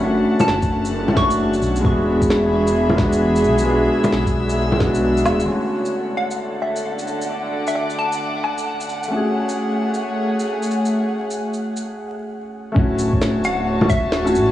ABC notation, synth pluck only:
X:1
M:4/4
L:1/16
Q:"Swing 16ths" 1/4=132
K:Dlyd
V:1 name="Synth pluck"
z3 a6 z c'3 z3 | z16 | z16 | z6 f2 z2 e4 z2 |
z3 e e z a2 z2 a6 | z16 | z16 | z6 f2 z2 e4 z2 |]